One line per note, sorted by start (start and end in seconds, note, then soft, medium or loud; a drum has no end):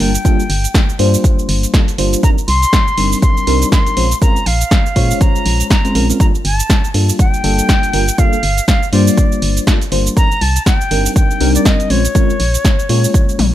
0.00 0.17 G1 medium
0.00 0.11 G3 medium
0.00 0.11 A#3 medium
0.00 0.11 D4 medium
0.00 0.11 F4 medium
0.00 0.11 A#4 medium
0.00 0.95 G5 loud
0.00 open hi-hat loud
0.15 closed hi-hat medium
0.15 cabasa medium
0.25 0.41 G3 loud
0.25 0.42 A#3 medium
0.25 0.42 D4 medium
0.25 0.42 F4 medium
0.25 0.42 A4 loud
0.25 kick loud
0.25 closed hi-hat medium
0.25 cabasa medium
0.40 cabasa soft
0.50 0.67 G1 loud
0.50 open hi-hat loud
0.64 closed hi-hat medium
0.64 cabasa medium
0.74 kick loud
0.74 snare loud
0.74 closed hi-hat medium
0.74 cabasa medium
0.89 cabasa soft
0.99 1.16 G2 medium
0.99 1.71 G3 loud
0.99 1.71 A#3 medium
0.99 1.71 D4 medium
0.99 1.71 F4 medium
0.99 1.71 C5 loud
0.99 open hi-hat loud
1.14 cabasa medium
1.24 kick loud
1.24 closed hi-hat medium
1.24 cabasa medium
1.39 cabasa soft
1.49 1.66 G1 loud
1.49 open hi-hat loud
1.63 closed hi-hat medium
1.63 cabasa medium
1.74 1.85 G3 medium
1.74 1.85 A#3 medium
1.74 1.85 D4 medium
1.74 1.85 F4 medium
1.74 1.85 A4 medium
1.74 kick loud
1.74 snare loud
1.74 closed hi-hat medium
1.74 cabasa medium
1.88 closed hi-hat medium
1.88 cabasa soft
1.98 2.16 G1 medium
1.98 2.21 G3 medium
1.98 2.21 A#3 medium
1.98 2.21 D4 medium
1.98 2.21 F4 medium
1.98 2.21 C5 medium
1.98 open hi-hat loud
2.13 closed hi-hat medium
2.13 cabasa medium
2.23 2.34 G3 medium
2.23 2.34 C4 medium
2.23 2.34 D4 medium
2.23 2.34 D#4 medium
2.23 2.34 A#4 medium
2.23 2.29 A#5 loud
2.23 kick loud
2.23 closed hi-hat medium
2.23 cabasa medium
2.38 cabasa soft
2.48 2.65 C2 loud
2.48 3.18 C6 loud
2.48 open hi-hat loud
2.62 closed hi-hat medium
2.62 cabasa medium
2.73 kick loud
2.73 snare loud
2.73 closed hi-hat medium
2.73 cabasa medium
2.88 cabasa soft
2.97 3.15 G1 medium
2.97 3.45 G3 medium
2.97 3.45 C4 medium
2.97 3.45 D4 medium
2.97 3.45 D#4 medium
2.97 3.45 A#4 medium
2.97 open hi-hat loud
3.12 cabasa medium
3.22 3.68 C6 loud
3.22 kick loud
3.22 closed hi-hat medium
3.22 cabasa medium
3.37 cabasa soft
3.47 3.64 C2 loud
3.47 3.94 G3 medium
3.47 3.94 C4 medium
3.47 3.94 D4 medium
3.47 3.94 D#4 medium
3.47 3.94 A#4 loud
3.47 open hi-hat loud
3.62 closed hi-hat soft
3.62 cabasa medium
3.72 4.18 C6 loud
3.72 kick loud
3.72 snare loud
3.72 closed hi-hat medium
3.72 cabasa medium
3.86 closed hi-hat medium
3.86 cabasa soft
3.97 4.14 A#1 medium
3.97 4.08 G#3 medium
3.97 4.08 C4 medium
3.97 4.08 C#4 medium
3.97 4.08 F4 medium
3.97 4.08 C5 medium
3.97 open hi-hat loud
4.11 closed hi-hat medium
4.11 cabasa medium
4.21 4.38 G#3 loud
4.21 4.38 C4 medium
4.21 4.38 C#4 medium
4.21 4.38 F4 medium
4.21 4.38 A#4 loud
4.21 4.48 A#5 loud
4.21 kick loud
4.21 closed hi-hat medium
4.21 cabasa medium
4.37 cabasa soft
4.46 4.64 A#1 loud
4.46 5.22 F5 loud
4.46 open hi-hat loud
4.61 closed hi-hat medium
4.61 cabasa medium
4.71 kick loud
4.71 snare loud
4.71 closed hi-hat medium
4.71 cabasa medium
4.86 cabasa soft
4.96 5.13 A#2 medium
4.96 5.68 G#3 loud
4.96 5.68 C#4 medium
4.96 5.68 F4 medium
4.96 5.68 C5 medium
4.96 5.68 C#5 loud
4.96 kick medium
4.96 open hi-hat loud
5.11 cabasa medium
5.21 5.70 A#5 loud
5.21 kick loud
5.21 closed hi-hat medium
5.21 cabasa medium
5.36 cabasa soft
5.46 5.63 A#1 loud
5.46 open hi-hat loud
5.60 closed hi-hat medium
5.60 cabasa medium
5.70 6.07 A#5 loud
5.70 kick loud
5.70 snare loud
5.70 closed hi-hat medium
5.70 cabasa medium
5.85 5.93 G#3 medium
5.85 5.93 C4 medium
5.85 5.93 C#4 medium
5.85 5.93 F4 medium
5.85 5.93 C5 medium
5.85 closed hi-hat medium
5.85 cabasa soft
5.95 6.12 A#1 medium
5.95 6.06 G#3 medium
5.95 6.06 C4 medium
5.95 6.06 C#4 medium
5.95 6.06 F4 medium
5.95 6.06 A#4 loud
5.95 open hi-hat loud
6.09 6.17 G#3 medium
6.09 6.17 C4 medium
6.09 6.17 C#4 medium
6.09 6.18 F4 medium
6.09 6.18 A#4 medium
6.09 closed hi-hat medium
6.09 cabasa medium
6.20 6.31 G3 medium
6.20 6.31 A#3 medium
6.20 6.31 D4 medium
6.20 6.31 A4 medium
6.20 6.26 A#5 loud
6.20 kick loud
6.20 closed hi-hat medium
6.20 cabasa medium
6.35 cabasa soft
6.45 6.62 G1 loud
6.45 6.89 A5 medium
6.45 open hi-hat loud
6.59 closed hi-hat medium
6.59 cabasa medium
6.70 kick loud
6.70 snare loud
6.70 closed hi-hat medium
6.70 cabasa medium
6.85 cabasa soft
6.94 7.12 G2 medium
6.94 7.41 G3 medium
6.94 7.41 A#3 medium
6.94 7.41 D4 medium
6.94 7.42 F4 medium
6.94 7.42 A4 medium
6.94 open hi-hat loud
7.09 cabasa medium
7.19 8.20 G5 loud
7.19 kick loud
7.19 closed hi-hat medium
7.19 cabasa medium
7.34 cabasa soft
7.44 7.61 G1 loud
7.44 7.91 G3 loud
7.44 7.91 A#3 medium
7.44 7.91 D4 medium
7.44 7.91 F4 medium
7.44 7.91 A4 loud
7.44 open hi-hat loud
7.58 closed hi-hat soft
7.58 cabasa medium
7.69 kick loud
7.69 snare loud
7.69 closed hi-hat medium
7.69 cabasa medium
7.83 closed hi-hat medium
7.83 cabasa soft
7.93 8.11 G1 medium
7.93 8.04 G3 medium
7.93 8.04 A#3 medium
7.93 8.04 D4 medium
7.93 8.04 F4 medium
7.93 8.05 A#4 medium
7.93 open hi-hat loud
8.08 closed hi-hat medium
8.08 cabasa medium
8.18 8.35 G3 medium
8.18 8.35 A#3 medium
8.18 8.35 D4 medium
8.18 8.35 F4 medium
8.18 8.35 A4 loud
8.18 8.68 F5 loud
8.18 kick loud
8.18 closed hi-hat medium
8.18 cabasa medium
8.33 cabasa soft
8.43 8.60 G1 loud
8.43 open hi-hat loud
8.57 closed hi-hat medium
8.57 cabasa medium
8.68 8.91 F5 loud
8.68 kick loud
8.68 snare loud
8.68 closed hi-hat medium
8.68 cabasa medium
8.83 cabasa soft
8.92 9.10 G2 medium
8.92 9.64 G3 loud
8.92 9.65 A#3 medium
8.92 9.65 D4 medium
8.92 9.65 F4 medium
8.92 9.65 C5 loud
8.92 9.63 D5 medium
8.92 open hi-hat loud
9.08 cabasa medium
9.17 kick loud
9.17 closed hi-hat medium
9.17 cabasa medium
9.32 cabasa soft
9.42 9.59 G1 loud
9.42 open hi-hat loud
9.57 closed hi-hat medium
9.57 cabasa medium
9.67 9.78 G3 medium
9.67 9.78 A#3 medium
9.67 9.78 D4 medium
9.67 9.78 F4 medium
9.67 9.78 A4 loud
9.67 kick loud
9.67 snare loud
9.67 closed hi-hat medium
9.67 cabasa medium
9.81 closed hi-hat medium
9.81 cabasa soft
9.92 10.09 G1 medium
9.92 10.14 G3 medium
9.92 10.14 A#3 medium
9.92 10.14 D4 medium
9.92 10.14 F4 medium
9.92 10.14 C5 loud
9.92 open hi-hat loud
10.06 closed hi-hat medium
10.06 cabasa medium
10.16 10.27 G3 medium
10.16 10.27 C4 medium
10.16 10.28 D4 medium
10.16 10.28 D#4 medium
10.16 10.28 A#4 medium
10.16 10.43 A#5 loud
10.16 kick loud
10.16 closed hi-hat medium
10.16 cabasa medium
10.32 cabasa soft
10.41 10.59 C2 loud
10.41 10.66 A5 loud
10.41 open hi-hat loud
10.56 closed hi-hat medium
10.56 cabasa medium
10.66 11.12 G5 loud
10.66 kick loud
10.66 snare loud
10.66 closed hi-hat medium
10.66 cabasa medium
10.81 cabasa soft
10.91 11.08 G1 medium
10.91 11.38 G3 medium
10.91 11.38 C4 medium
10.91 11.38 D4 medium
10.91 11.38 D#4 medium
10.91 11.38 A#4 medium
10.91 open hi-hat loud
11.06 cabasa medium
11.16 11.52 G5 loud
11.16 kick loud
11.16 closed hi-hat medium
11.16 cabasa medium
11.31 cabasa soft
11.40 11.58 C2 loud
11.40 11.88 G3 loud
11.40 11.88 C4 medium
11.40 11.88 D4 medium
11.40 11.88 D#4 medium
11.40 11.88 A#4 loud
11.40 open hi-hat loud
11.55 11.67 D5 medium
11.55 closed hi-hat medium
11.55 cabasa medium
11.65 11.92 D#5 loud
11.65 kick loud
11.65 snare loud
11.65 closed hi-hat medium
11.65 cabasa medium
11.80 closed hi-hat medium
11.80 cabasa soft
11.90 12.07 A#1 medium
11.90 12.01 G#3 medium
11.90 12.01 C4 medium
11.90 12.01 C#4 medium
11.90 12.01 F4 medium
11.90 12.01 C5 medium
11.90 13.54 C#5 loud
11.90 open hi-hat loud
12.05 closed hi-hat medium
12.05 cabasa medium
12.15 12.31 G#3 loud
12.15 12.32 C4 medium
12.15 12.32 C#4 medium
12.15 12.32 F4 medium
12.15 12.32 A#4 loud
12.15 kick loud
12.15 closed hi-hat medium
12.15 cabasa medium
12.30 cabasa soft
12.40 12.57 A#1 loud
12.40 open hi-hat loud
12.54 closed hi-hat medium
12.54 cabasa medium
12.65 kick loud
12.65 snare loud
12.65 closed hi-hat medium
12.65 cabasa medium
12.79 cabasa soft
12.89 13.07 A#2 medium
12.89 13.54 G#3 loud
12.89 13.54 A#3 medium
12.89 13.54 C#4 medium
12.89 13.54 F4 medium
12.89 13.54 C#5 loud
12.89 open hi-hat loud
13.04 cabasa medium
13.14 kick loud
13.14 closed hi-hat medium
13.14 cabasa medium
13.29 cabasa soft
13.39 13.54 A#1 loud
13.39 open hi-hat loud
13.39 high tom medium